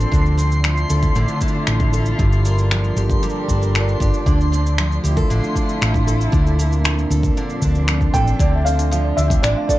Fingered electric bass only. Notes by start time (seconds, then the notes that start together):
0.12 D2
0.90 D2
1.16 A1
1.67 A1
2.19 G1
2.96 G1
3.49 G1
4.00 G1
4.26 D2
5.04 D2
5.30 A1
5.82 A1
6.33 D2
7.10 D2
7.62 D2
8.14 A1
8.40 D2
9.17 D2
9.44 A1